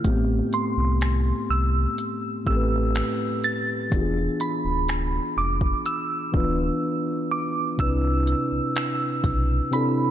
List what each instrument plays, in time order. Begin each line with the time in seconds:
0.03 sub bass A1, tine electric piano A2 A3 C4 G4, kick, closed hi-hat
0.08 tine electric piano B3
0.53 synth bell C6, closed hi-hat
0.77 sub bass C2
1.01 finger snap, closed hi-hat
1.50 sub bass C2, synth bell E6
1.98 closed hi-hat
2.45 sub bass A1, tine electric piano A2 A3 C4 G4, synth bell E6, kick
2.50 tine electric piano A4
2.56 tine electric piano B4
2.95 finger snap, closed hi-hat
3.44 synth bell A6, closed hi-hat
3.90 sub bass E1, tine electric piano E3 B3 D4 F4, kick, closed hi-hat
3.95 tine electric piano G4
4.02 tine electric piano G#4
4.40 synth bell B5, closed hi-hat
4.64 sub bass D1
4.89 finger snap, closed hi-hat
5.37 sub bass F1, synth bell D6
5.61 kick
5.86 synth bell E6, closed hi-hat
6.32 sub bass D1, tine electric piano E3 B3 D4 F4, kick
6.37 tine electric piano B4
7.31 synth bell D6
7.77 sub bass C2, tine electric piano C3 C4 D4 E4, synth bell E6, kick, closed hi-hat
7.82 tine electric piano B4
8.27 closed hi-hat
8.52 sub bass B1
8.76 synth bell E6, finger snap, closed hi-hat
9.24 sub bass B1, kick, closed hi-hat
9.70 tine electric piano C3 C4 D4 E4, synth bell B5, closed hi-hat
9.75 tine electric piano A4